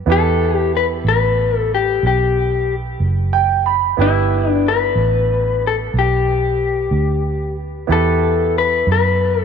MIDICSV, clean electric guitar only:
0, 0, Header, 1, 2, 480
1, 0, Start_track
1, 0, Key_signature, 1, "minor"
1, 0, Tempo, 651466
1, 57, Time_signature, 12, 3, 24, 8
1, 6960, End_track
2, 0, Start_track
2, 0, Title_t, "Clean electric guitar"
2, 0, Program_c, 0, 27
2, 86, Note_on_c, 0, 69, 71
2, 418, Note_off_c, 0, 69, 0
2, 418, Note_on_c, 0, 67, 71
2, 522, Note_off_c, 0, 67, 0
2, 565, Note_on_c, 0, 71, 74
2, 626, Note_off_c, 0, 71, 0
2, 799, Note_on_c, 0, 71, 75
2, 1167, Note_off_c, 0, 71, 0
2, 1167, Note_on_c, 0, 69, 75
2, 1282, Note_off_c, 0, 69, 0
2, 1286, Note_on_c, 0, 67, 61
2, 1515, Note_off_c, 0, 67, 0
2, 1524, Note_on_c, 0, 67, 50
2, 2021, Note_off_c, 0, 67, 0
2, 2958, Note_on_c, 0, 64, 72
2, 3326, Note_off_c, 0, 64, 0
2, 3326, Note_on_c, 0, 62, 72
2, 3442, Note_off_c, 0, 62, 0
2, 3451, Note_on_c, 0, 71, 81
2, 4176, Note_off_c, 0, 71, 0
2, 4180, Note_on_c, 0, 69, 64
2, 4239, Note_off_c, 0, 69, 0
2, 4411, Note_on_c, 0, 67, 58
2, 5566, Note_off_c, 0, 67, 0
2, 5838, Note_on_c, 0, 69, 70
2, 6321, Note_off_c, 0, 69, 0
2, 6324, Note_on_c, 0, 71, 77
2, 6536, Note_off_c, 0, 71, 0
2, 6572, Note_on_c, 0, 71, 74
2, 6933, Note_off_c, 0, 71, 0
2, 6933, Note_on_c, 0, 69, 74
2, 6960, Note_off_c, 0, 69, 0
2, 6960, End_track
0, 0, End_of_file